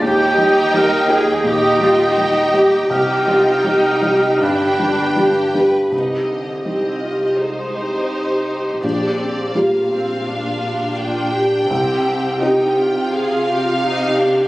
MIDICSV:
0, 0, Header, 1, 8, 480
1, 0, Start_track
1, 0, Key_signature, -3, "minor"
1, 0, Tempo, 721154
1, 12, Time_signature, 4, 2, 24, 8
1, 1932, Tempo, 756620
1, 3852, Tempo, 729927
1, 5292, Tempo, 715990
1, 9555, End_track
2, 0, Start_track
2, 0, Title_t, "Violin section"
2, 0, Program_c, 0, 48
2, 16, Note_on_c, 0, 79, 69
2, 946, Note_off_c, 0, 79, 0
2, 969, Note_on_c, 0, 79, 69
2, 1912, Note_off_c, 0, 79, 0
2, 1932, Note_on_c, 0, 79, 57
2, 2868, Note_off_c, 0, 79, 0
2, 2892, Note_on_c, 0, 79, 54
2, 3708, Note_off_c, 0, 79, 0
2, 3850, Note_on_c, 0, 75, 31
2, 4304, Note_off_c, 0, 75, 0
2, 4328, Note_on_c, 0, 75, 33
2, 4799, Note_off_c, 0, 75, 0
2, 4810, Note_on_c, 0, 72, 39
2, 5771, Note_off_c, 0, 72, 0
2, 5774, Note_on_c, 0, 74, 38
2, 6242, Note_off_c, 0, 74, 0
2, 6253, Note_on_c, 0, 77, 38
2, 7214, Note_on_c, 0, 79, 50
2, 7216, Note_off_c, 0, 77, 0
2, 8176, Note_off_c, 0, 79, 0
2, 8183, Note_on_c, 0, 79, 49
2, 8646, Note_off_c, 0, 79, 0
2, 8653, Note_on_c, 0, 77, 59
2, 9555, Note_off_c, 0, 77, 0
2, 9555, End_track
3, 0, Start_track
3, 0, Title_t, "Oboe"
3, 0, Program_c, 1, 68
3, 14, Note_on_c, 1, 79, 104
3, 485, Note_off_c, 1, 79, 0
3, 503, Note_on_c, 1, 77, 84
3, 802, Note_off_c, 1, 77, 0
3, 969, Note_on_c, 1, 75, 96
3, 1904, Note_off_c, 1, 75, 0
3, 1934, Note_on_c, 1, 70, 76
3, 2894, Note_on_c, 1, 71, 66
3, 2904, Note_off_c, 1, 70, 0
3, 3618, Note_off_c, 1, 71, 0
3, 9555, End_track
4, 0, Start_track
4, 0, Title_t, "Violin section"
4, 0, Program_c, 2, 48
4, 13, Note_on_c, 2, 67, 67
4, 944, Note_off_c, 2, 67, 0
4, 972, Note_on_c, 2, 67, 71
4, 1913, Note_off_c, 2, 67, 0
4, 1930, Note_on_c, 2, 67, 60
4, 2867, Note_off_c, 2, 67, 0
4, 2889, Note_on_c, 2, 67, 52
4, 3316, Note_off_c, 2, 67, 0
4, 3370, Note_on_c, 2, 67, 54
4, 3596, Note_off_c, 2, 67, 0
4, 3615, Note_on_c, 2, 71, 58
4, 3852, Note_off_c, 2, 71, 0
4, 9555, End_track
5, 0, Start_track
5, 0, Title_t, "Cello section"
5, 0, Program_c, 3, 48
5, 12, Note_on_c, 3, 67, 71
5, 484, Note_off_c, 3, 67, 0
5, 494, Note_on_c, 3, 70, 74
5, 732, Note_off_c, 3, 70, 0
5, 734, Note_on_c, 3, 68, 69
5, 971, Note_off_c, 3, 68, 0
5, 976, Note_on_c, 3, 67, 71
5, 1211, Note_off_c, 3, 67, 0
5, 1211, Note_on_c, 3, 65, 66
5, 1449, Note_off_c, 3, 65, 0
5, 1450, Note_on_c, 3, 63, 58
5, 1689, Note_off_c, 3, 63, 0
5, 1695, Note_on_c, 3, 67, 57
5, 1927, Note_off_c, 3, 67, 0
5, 1935, Note_on_c, 3, 67, 64
5, 2162, Note_off_c, 3, 67, 0
5, 2172, Note_on_c, 3, 65, 52
5, 2405, Note_off_c, 3, 65, 0
5, 2405, Note_on_c, 3, 63, 58
5, 2888, Note_off_c, 3, 63, 0
5, 2888, Note_on_c, 3, 62, 49
5, 3614, Note_off_c, 3, 62, 0
5, 3853, Note_on_c, 3, 36, 34
5, 5746, Note_off_c, 3, 36, 0
5, 5770, Note_on_c, 3, 46, 47
5, 7669, Note_off_c, 3, 46, 0
5, 7698, Note_on_c, 3, 48, 59
5, 9555, Note_off_c, 3, 48, 0
5, 9555, End_track
6, 0, Start_track
6, 0, Title_t, "Felt piano"
6, 0, Program_c, 4, 0
6, 0, Control_c, 4, 64, 127
6, 9, Note_on_c, 4, 39, 61
6, 23, Control_c, 4, 64, 0
6, 124, Control_c, 4, 64, 127
6, 247, Note_off_c, 4, 39, 0
6, 252, Note_on_c, 4, 55, 44
6, 257, Note_on_c, 4, 63, 48
6, 260, Note_on_c, 4, 67, 48
6, 469, Note_off_c, 4, 55, 0
6, 471, Note_off_c, 4, 63, 0
6, 473, Note_off_c, 4, 67, 0
6, 492, Note_on_c, 4, 55, 43
6, 493, Note_on_c, 4, 63, 46
6, 498, Note_on_c, 4, 67, 54
6, 707, Note_off_c, 4, 55, 0
6, 707, Note_off_c, 4, 63, 0
6, 710, Note_off_c, 4, 67, 0
6, 721, Note_on_c, 4, 58, 45
6, 727, Note_on_c, 4, 63, 45
6, 729, Note_on_c, 4, 79, 52
6, 940, Note_off_c, 4, 58, 0
6, 944, Note_off_c, 4, 63, 0
6, 945, Note_off_c, 4, 79, 0
6, 958, Note_on_c, 4, 46, 56
6, 1195, Note_off_c, 4, 46, 0
6, 1198, Note_on_c, 4, 55, 43
6, 1201, Note_on_c, 4, 63, 43
6, 1203, Note_on_c, 4, 67, 48
6, 1418, Note_off_c, 4, 55, 0
6, 1419, Note_off_c, 4, 63, 0
6, 1421, Note_off_c, 4, 67, 0
6, 1448, Note_on_c, 4, 55, 40
6, 1449, Note_on_c, 4, 63, 42
6, 1452, Note_on_c, 4, 67, 46
6, 1664, Note_off_c, 4, 55, 0
6, 1665, Note_off_c, 4, 63, 0
6, 1667, Note_off_c, 4, 67, 0
6, 1686, Note_on_c, 4, 63, 41
6, 1687, Note_on_c, 4, 55, 41
6, 1692, Note_on_c, 4, 67, 44
6, 1906, Note_off_c, 4, 55, 0
6, 1906, Note_off_c, 4, 63, 0
6, 1909, Note_off_c, 4, 67, 0
6, 1929, Note_on_c, 4, 36, 53
6, 1944, Control_c, 4, 64, 0
6, 2047, Control_c, 4, 64, 127
6, 2157, Note_off_c, 4, 36, 0
6, 2164, Note_on_c, 4, 55, 41
6, 2167, Note_on_c, 4, 63, 38
6, 2170, Note_on_c, 4, 67, 42
6, 2377, Note_off_c, 4, 55, 0
6, 2379, Note_off_c, 4, 63, 0
6, 2381, Note_off_c, 4, 67, 0
6, 2400, Note_on_c, 4, 55, 37
6, 2406, Note_on_c, 4, 63, 43
6, 2406, Note_on_c, 4, 67, 44
6, 2617, Note_off_c, 4, 55, 0
6, 2621, Note_off_c, 4, 63, 0
6, 2621, Note_off_c, 4, 67, 0
6, 2642, Note_on_c, 4, 55, 39
6, 2644, Note_on_c, 4, 63, 38
6, 2649, Note_on_c, 4, 67, 42
6, 2862, Note_off_c, 4, 55, 0
6, 2863, Note_off_c, 4, 63, 0
6, 2866, Note_off_c, 4, 67, 0
6, 2883, Note_on_c, 4, 43, 49
6, 2899, Control_c, 4, 64, 0
6, 3025, Control_c, 4, 64, 127
6, 3121, Note_off_c, 4, 43, 0
6, 3130, Note_on_c, 4, 55, 37
6, 3130, Note_on_c, 4, 62, 35
6, 3134, Note_on_c, 4, 67, 37
6, 3348, Note_off_c, 4, 55, 0
6, 3348, Note_off_c, 4, 62, 0
6, 3350, Note_off_c, 4, 67, 0
6, 3365, Note_on_c, 4, 55, 35
6, 3371, Note_on_c, 4, 62, 33
6, 3372, Note_on_c, 4, 67, 37
6, 3586, Note_off_c, 4, 55, 0
6, 3589, Note_off_c, 4, 62, 0
6, 3589, Note_off_c, 4, 67, 0
6, 3606, Note_on_c, 4, 55, 38
6, 3611, Note_on_c, 4, 62, 38
6, 3614, Note_on_c, 4, 67, 35
6, 3823, Note_off_c, 4, 55, 0
6, 3826, Note_off_c, 4, 62, 0
6, 3827, Note_off_c, 4, 67, 0
6, 3844, Note_on_c, 4, 36, 36
6, 3864, Control_c, 4, 64, 0
6, 3981, Control_c, 4, 64, 127
6, 4313, Note_off_c, 4, 36, 0
6, 4327, Note_on_c, 4, 63, 26
6, 4328, Note_on_c, 4, 55, 25
6, 4331, Note_on_c, 4, 67, 30
6, 5743, Note_off_c, 4, 63, 0
6, 5744, Note_off_c, 4, 55, 0
6, 5745, Note_off_c, 4, 67, 0
6, 5772, Note_on_c, 4, 34, 37
6, 5784, Control_c, 4, 64, 0
6, 5908, Control_c, 4, 64, 127
6, 6236, Note_off_c, 4, 34, 0
6, 6251, Note_on_c, 4, 55, 32
6, 6255, Note_on_c, 4, 65, 33
6, 6257, Note_on_c, 4, 67, 35
6, 7670, Note_off_c, 4, 55, 0
6, 7672, Note_off_c, 4, 65, 0
6, 7673, Note_off_c, 4, 67, 0
6, 7695, Note_on_c, 4, 36, 52
6, 7708, Control_c, 4, 64, 0
6, 7833, Control_c, 4, 64, 127
6, 8161, Note_off_c, 4, 36, 0
6, 8172, Note_on_c, 4, 60, 39
6, 8174, Note_on_c, 4, 63, 40
6, 8177, Note_on_c, 4, 67, 44
6, 9555, Note_off_c, 4, 60, 0
6, 9555, Note_off_c, 4, 63, 0
6, 9555, Note_off_c, 4, 67, 0
6, 9555, End_track
7, 0, Start_track
7, 0, Title_t, "Viola section"
7, 0, Program_c, 5, 48
7, 13, Note_on_c, 5, 63, 77
7, 944, Note_off_c, 5, 63, 0
7, 971, Note_on_c, 5, 63, 64
7, 1913, Note_off_c, 5, 63, 0
7, 1931, Note_on_c, 5, 63, 70
7, 2867, Note_off_c, 5, 63, 0
7, 2886, Note_on_c, 5, 62, 50
7, 3722, Note_off_c, 5, 62, 0
7, 3851, Note_on_c, 5, 63, 38
7, 3852, Note_on_c, 5, 67, 38
7, 4075, Note_off_c, 5, 63, 0
7, 4088, Note_on_c, 5, 50, 30
7, 4305, Note_off_c, 5, 67, 0
7, 4327, Note_on_c, 5, 60, 35
7, 4327, Note_on_c, 5, 67, 30
7, 4329, Note_off_c, 5, 50, 0
7, 4563, Note_off_c, 5, 60, 0
7, 4565, Note_on_c, 5, 65, 36
7, 4799, Note_off_c, 5, 67, 0
7, 4808, Note_off_c, 5, 65, 0
7, 4809, Note_on_c, 5, 63, 35
7, 4811, Note_on_c, 5, 56, 34
7, 5047, Note_on_c, 5, 67, 35
7, 5051, Note_off_c, 5, 56, 0
7, 5758, Note_off_c, 5, 67, 0
7, 5764, Note_on_c, 5, 62, 44
7, 5766, Note_on_c, 5, 67, 44
7, 5771, Note_off_c, 5, 63, 0
7, 6002, Note_off_c, 5, 62, 0
7, 6006, Note_on_c, 5, 60, 42
7, 6238, Note_off_c, 5, 67, 0
7, 6248, Note_off_c, 5, 60, 0
7, 6251, Note_on_c, 5, 58, 43
7, 6252, Note_on_c, 5, 65, 40
7, 6486, Note_off_c, 5, 58, 0
7, 6486, Note_on_c, 5, 60, 46
7, 6727, Note_on_c, 5, 62, 49
7, 6729, Note_off_c, 5, 60, 0
7, 6964, Note_off_c, 5, 62, 0
7, 6972, Note_on_c, 5, 62, 50
7, 7196, Note_off_c, 5, 65, 0
7, 7212, Note_on_c, 5, 65, 50
7, 7449, Note_off_c, 5, 65, 0
7, 7456, Note_on_c, 5, 67, 52
7, 7682, Note_off_c, 5, 62, 0
7, 7687, Note_off_c, 5, 67, 0
7, 7695, Note_on_c, 5, 67, 58
7, 7697, Note_on_c, 5, 60, 54
7, 8166, Note_off_c, 5, 67, 0
7, 8172, Note_on_c, 5, 63, 53
7, 8174, Note_on_c, 5, 67, 49
7, 8177, Note_off_c, 5, 60, 0
7, 8407, Note_off_c, 5, 63, 0
7, 8415, Note_on_c, 5, 65, 58
7, 8641, Note_off_c, 5, 67, 0
7, 8646, Note_on_c, 5, 68, 60
7, 8883, Note_off_c, 5, 68, 0
7, 8889, Note_on_c, 5, 67, 53
7, 9121, Note_off_c, 5, 67, 0
7, 9127, Note_on_c, 5, 63, 57
7, 9129, Note_on_c, 5, 67, 53
7, 9132, Note_off_c, 5, 65, 0
7, 9365, Note_off_c, 5, 63, 0
7, 9367, Note_on_c, 5, 62, 55
7, 9555, Note_off_c, 5, 62, 0
7, 9555, Note_off_c, 5, 67, 0
7, 9555, End_track
8, 0, Start_track
8, 0, Title_t, "Double bass section"
8, 0, Program_c, 6, 48
8, 9, Note_on_c, 6, 39, 76
8, 1903, Note_off_c, 6, 39, 0
8, 1930, Note_on_c, 6, 36, 60
8, 2867, Note_off_c, 6, 36, 0
8, 2888, Note_on_c, 6, 31, 54
8, 3723, Note_off_c, 6, 31, 0
8, 3850, Note_on_c, 6, 36, 35
8, 4304, Note_off_c, 6, 36, 0
8, 5770, Note_on_c, 6, 34, 44
8, 6223, Note_off_c, 6, 34, 0
8, 7699, Note_on_c, 6, 36, 53
8, 8151, Note_off_c, 6, 36, 0
8, 9555, End_track
0, 0, End_of_file